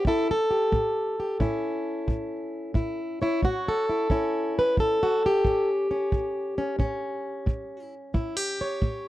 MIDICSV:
0, 0, Header, 1, 3, 480
1, 0, Start_track
1, 0, Tempo, 674157
1, 1000, Time_signature, 4, 2, 24, 8
1, 6465, End_track
2, 0, Start_track
2, 0, Title_t, "Steel-string acoustic guitar"
2, 0, Program_c, 0, 25
2, 0, Note_on_c, 0, 61, 44
2, 33, Note_on_c, 0, 45, 58
2, 52, Note_on_c, 0, 64, 64
2, 58, Note_on_c, 0, 69, 84
2, 205, Note_off_c, 0, 64, 0
2, 208, Note_off_c, 0, 69, 0
2, 220, Note_on_c, 0, 69, 80
2, 361, Note_on_c, 0, 67, 40
2, 485, Note_off_c, 0, 45, 0
2, 513, Note_on_c, 0, 45, 70
2, 849, Note_off_c, 0, 67, 0
2, 852, Note_on_c, 0, 67, 42
2, 966, Note_off_c, 0, 45, 0
2, 997, Note_off_c, 0, 61, 0
2, 997, Note_on_c, 0, 45, 71
2, 1000, Note_on_c, 0, 61, 47
2, 1003, Note_off_c, 0, 67, 0
2, 1006, Note_on_c, 0, 64, 47
2, 1448, Note_off_c, 0, 45, 0
2, 1479, Note_on_c, 0, 45, 58
2, 1929, Note_off_c, 0, 45, 0
2, 1953, Note_on_c, 0, 45, 62
2, 1956, Note_off_c, 0, 64, 0
2, 1959, Note_on_c, 0, 64, 41
2, 2132, Note_off_c, 0, 69, 0
2, 2290, Note_on_c, 0, 73, 41
2, 2294, Note_off_c, 0, 64, 0
2, 2297, Note_on_c, 0, 64, 78
2, 2406, Note_off_c, 0, 45, 0
2, 2444, Note_on_c, 0, 45, 70
2, 2449, Note_off_c, 0, 64, 0
2, 2455, Note_on_c, 0, 66, 85
2, 2621, Note_off_c, 0, 73, 0
2, 2623, Note_on_c, 0, 69, 86
2, 2770, Note_off_c, 0, 66, 0
2, 2773, Note_on_c, 0, 64, 43
2, 2892, Note_off_c, 0, 45, 0
2, 2921, Note_off_c, 0, 61, 0
2, 2921, Note_on_c, 0, 45, 65
2, 2924, Note_on_c, 0, 61, 49
2, 2925, Note_off_c, 0, 64, 0
2, 2928, Note_on_c, 0, 64, 42
2, 3252, Note_off_c, 0, 69, 0
2, 3266, Note_on_c, 0, 71, 81
2, 3370, Note_off_c, 0, 45, 0
2, 3400, Note_on_c, 0, 45, 66
2, 3414, Note_off_c, 0, 71, 0
2, 3418, Note_on_c, 0, 69, 78
2, 3578, Note_off_c, 0, 64, 0
2, 3581, Note_on_c, 0, 66, 79
2, 3731, Note_off_c, 0, 66, 0
2, 3745, Note_on_c, 0, 67, 79
2, 3849, Note_off_c, 0, 45, 0
2, 3880, Note_on_c, 0, 45, 57
2, 3882, Note_off_c, 0, 61, 0
2, 3885, Note_on_c, 0, 61, 43
2, 4050, Note_off_c, 0, 69, 0
2, 4198, Note_off_c, 0, 61, 0
2, 4207, Note_on_c, 0, 61, 41
2, 4329, Note_off_c, 0, 45, 0
2, 4361, Note_on_c, 0, 45, 65
2, 4677, Note_off_c, 0, 61, 0
2, 4685, Note_on_c, 0, 61, 44
2, 4809, Note_off_c, 0, 45, 0
2, 4822, Note_off_c, 0, 61, 0
2, 4832, Note_on_c, 0, 45, 61
2, 4839, Note_on_c, 0, 61, 47
2, 5285, Note_off_c, 0, 45, 0
2, 5314, Note_on_c, 0, 45, 61
2, 5652, Note_off_c, 0, 67, 0
2, 5766, Note_off_c, 0, 45, 0
2, 5797, Note_on_c, 0, 45, 63
2, 5797, Note_on_c, 0, 64, 43
2, 5957, Note_off_c, 0, 64, 0
2, 5957, Note_on_c, 0, 67, 40
2, 6131, Note_on_c, 0, 73, 42
2, 6248, Note_off_c, 0, 45, 0
2, 6280, Note_on_c, 0, 45, 71
2, 6465, Note_off_c, 0, 45, 0
2, 6465, Note_off_c, 0, 61, 0
2, 6465, Note_off_c, 0, 67, 0
2, 6465, Note_off_c, 0, 73, 0
2, 6465, End_track
3, 0, Start_track
3, 0, Title_t, "Drums"
3, 34, Note_on_c, 9, 36, 65
3, 106, Note_off_c, 9, 36, 0
3, 516, Note_on_c, 9, 36, 58
3, 587, Note_off_c, 9, 36, 0
3, 998, Note_on_c, 9, 36, 63
3, 1069, Note_off_c, 9, 36, 0
3, 1480, Note_on_c, 9, 36, 57
3, 1551, Note_off_c, 9, 36, 0
3, 1959, Note_on_c, 9, 36, 63
3, 2030, Note_off_c, 9, 36, 0
3, 2439, Note_on_c, 9, 36, 53
3, 2510, Note_off_c, 9, 36, 0
3, 2919, Note_on_c, 9, 36, 60
3, 2990, Note_off_c, 9, 36, 0
3, 3398, Note_on_c, 9, 36, 56
3, 3469, Note_off_c, 9, 36, 0
3, 3878, Note_on_c, 9, 36, 63
3, 3949, Note_off_c, 9, 36, 0
3, 4359, Note_on_c, 9, 36, 59
3, 4430, Note_off_c, 9, 36, 0
3, 4839, Note_on_c, 9, 36, 58
3, 4910, Note_off_c, 9, 36, 0
3, 5319, Note_on_c, 9, 36, 57
3, 5390, Note_off_c, 9, 36, 0
3, 5799, Note_on_c, 9, 36, 65
3, 5870, Note_off_c, 9, 36, 0
3, 6278, Note_on_c, 9, 36, 58
3, 6350, Note_off_c, 9, 36, 0
3, 6465, End_track
0, 0, End_of_file